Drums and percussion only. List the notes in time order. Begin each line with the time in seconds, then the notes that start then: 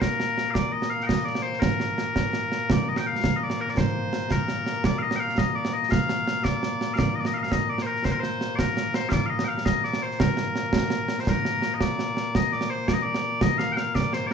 0.02 concert bass drum, snare
0.20 snare
0.38 snare
0.55 concert bass drum, snare
0.82 snare
1.00 snare
1.09 concert bass drum, snare
1.27 snare
1.35 snare
1.53 snare
1.62 concert bass drum, snare
1.80 snare
1.98 snare
2.16 concert bass drum, snare
2.33 snare
2.52 snare
2.70 concert bass drum, snare
2.96 snare
3.15 snare
3.24 concert bass drum, snare
3.50 snare
3.68 snare
3.77 concert bass drum, snare
4.13 snare
4.31 concert bass drum, snare
4.48 snare
4.66 snare
4.84 concert bass drum, snare
5.11 snare
5.29 snare
5.38 concert bass drum, snare
5.65 snare
5.83 snare
5.92 concert bass drum, snare
6.09 snare
6.28 snare
6.45 concert bass drum, snare
6.63 snare
6.81 snare
6.99 concert bass drum, snare
7.25 snare
7.43 snare
7.52 concert bass drum, snare
7.78 snare
7.96 snare
8.05 concert bass drum, snare
8.23 snare
8.41 snare
8.59 concert bass drum, snare
8.77 snare
8.94 snare
9.12 concert bass drum, snare
9.39 snare
9.57 snare
9.66 concert bass drum, snare
9.84 snare
9.93 snare
10.11 snare
10.20 concert bass drum, snare
10.37 snare
10.56 snare
10.73 concert bass drum, snare
10.90 snare
11.08 snare
11.27 concert bass drum, snare
11.45 snare
11.62 snare
11.81 concert bass drum, snare
11.99 snare
12.17 snare
12.35 concert bass drum, snare
12.52 snare
12.61 snare
12.88 concert bass drum, snare
13.14 snare
13.41 concert bass drum, snare
13.59 snare
13.77 snare
13.95 concert bass drum, snare
14.13 snare